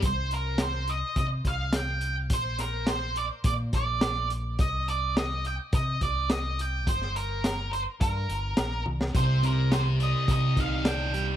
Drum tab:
HH |x-x-x-x-x-x-x-x-|x-x-x-x-x-x-x-x-|x-x-x-x-x-x-x-x-|x-x-x-x-x-x-x---|
SD |----o-------o---|--o-o-------o---|----o-------o---|-o--o-------o--o|
T1 |----------------|----------------|----------------|--------------o-|
BD |o-------o-o-----|o-------o-o-----|o-------o-o-----|o-------o-------|

HH |x-x-x-x-x-x-x-x-|
SD |----o-------o---|
T1 |----------------|
BD |o-------o-o-----|